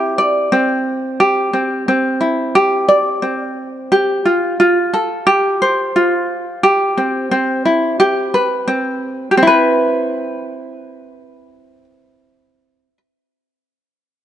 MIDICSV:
0, 0, Header, 1, 2, 480
1, 0, Start_track
1, 0, Key_signature, 0, "major"
1, 0, Tempo, 680195
1, 845, Time_signature, 4, 2, 24, 8
1, 10050, End_track
2, 0, Start_track
2, 0, Title_t, "Ukulele"
2, 0, Program_c, 0, 24
2, 0, Note_on_c, 0, 60, 77
2, 0, Note_on_c, 0, 64, 69
2, 0, Note_on_c, 0, 67, 81
2, 0, Note_on_c, 0, 72, 91
2, 126, Note_off_c, 0, 72, 0
2, 128, Note_on_c, 0, 74, 75
2, 365, Note_off_c, 0, 60, 0
2, 368, Note_on_c, 0, 60, 75
2, 844, Note_off_c, 0, 67, 0
2, 847, Note_on_c, 0, 67, 87
2, 1080, Note_off_c, 0, 60, 0
2, 1083, Note_on_c, 0, 60, 64
2, 1325, Note_off_c, 0, 60, 0
2, 1328, Note_on_c, 0, 60, 76
2, 1548, Note_off_c, 0, 64, 0
2, 1557, Note_on_c, 0, 64, 62
2, 1798, Note_off_c, 0, 67, 0
2, 1801, Note_on_c, 0, 67, 100
2, 2027, Note_off_c, 0, 74, 0
2, 2036, Note_on_c, 0, 74, 79
2, 2271, Note_off_c, 0, 60, 0
2, 2274, Note_on_c, 0, 60, 74
2, 2762, Note_off_c, 0, 64, 0
2, 2764, Note_off_c, 0, 67, 0
2, 2764, Note_on_c, 0, 67, 83
2, 2809, Note_off_c, 0, 74, 0
2, 2999, Note_off_c, 0, 60, 0
2, 3002, Note_on_c, 0, 65, 61
2, 3236, Note_off_c, 0, 65, 0
2, 3245, Note_on_c, 0, 65, 72
2, 3482, Note_on_c, 0, 69, 69
2, 3716, Note_off_c, 0, 67, 0
2, 3716, Note_on_c, 0, 67, 99
2, 3964, Note_on_c, 0, 72, 80
2, 4196, Note_off_c, 0, 65, 0
2, 4205, Note_on_c, 0, 65, 72
2, 4678, Note_off_c, 0, 67, 0
2, 4681, Note_on_c, 0, 67, 86
2, 4732, Note_off_c, 0, 69, 0
2, 4733, Note_off_c, 0, 65, 0
2, 4922, Note_on_c, 0, 60, 61
2, 5159, Note_off_c, 0, 60, 0
2, 5161, Note_on_c, 0, 60, 73
2, 5399, Note_off_c, 0, 72, 0
2, 5401, Note_on_c, 0, 64, 70
2, 5640, Note_off_c, 0, 64, 0
2, 5643, Note_off_c, 0, 67, 0
2, 5643, Note_on_c, 0, 67, 91
2, 5886, Note_on_c, 0, 71, 70
2, 6119, Note_off_c, 0, 60, 0
2, 6122, Note_on_c, 0, 60, 70
2, 6568, Note_off_c, 0, 60, 0
2, 6571, Note_off_c, 0, 67, 0
2, 6571, Note_on_c, 0, 67, 78
2, 6612, Note_off_c, 0, 67, 0
2, 6615, Note_on_c, 0, 60, 90
2, 6652, Note_on_c, 0, 64, 93
2, 6685, Note_off_c, 0, 71, 0
2, 6685, Note_on_c, 0, 71, 100
2, 9085, Note_off_c, 0, 60, 0
2, 9122, Note_off_c, 0, 64, 0
2, 9155, Note_off_c, 0, 71, 0
2, 10050, End_track
0, 0, End_of_file